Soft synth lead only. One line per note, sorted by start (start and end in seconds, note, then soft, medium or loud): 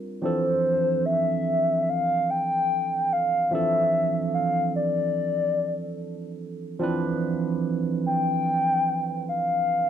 0.24 1.07 C5 medium
1.05 1.82 E5 loud
1.82 1.91 E5 medium
1.89 2.32 F5 loud
2.30 3.14 G5 loud
3.13 3.54 F5 loud
3.53 4.34 E5 loud
4.35 4.72 F5 loud
4.76 6.36 D5 loud
8.06 9.24 G5 loud
9.29 9.90 F5 loud